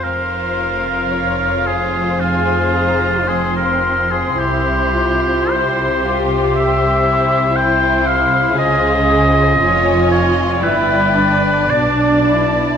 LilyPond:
<<
  \new Staff \with { instrumentName = "Violin section" } { \time 4/4 \key f \minor \tempo 4 = 56 f''2 aes''8 bes''8 c'''4~ | c'''2. c'''4 | aes''8 aes''4. g''4 a''4 | }
  \new Staff \with { instrumentName = "Oboe" } { \time 4/4 \key f \minor bes'4. aes'8 f'4 aes'16 bes'8 aes'16 | g'4 c''8. r16 e''4 g''8 f''8 | ees''4. des''8 b'4 d''4 | }
  \new Staff \with { instrumentName = "Violin section" } { \time 4/4 \key f \minor << { c''4 des''8 c''2~ c''8 | c''1~ | c''4 des''8 ees''8 d''2 | } \\ { f'1 | e'4 e'8 f'8 g'8 e'8 e'4 | f'4 f'4 e'8 d'8 d'8 e'8 | } >> }
  \new Staff \with { instrumentName = "Viola section" } { \time 4/4 \key f \minor r2 aes'4 c'4 | e'8 f'8 g'2 e'4 | aes'4 f'4 e'8 d'4. | }
  \new Staff \with { instrumentName = "Cello section" } { \clef bass \time 4/4 \key f \minor f,1 | c1 | des4 f,4 g,4 b,4 | }
  \new Staff \with { instrumentName = "Double bass section" } { \clef bass \time 4/4 \key f \minor f,,1 | c,1 | des,4 f,,4 g,,4 b,,4 | }
>>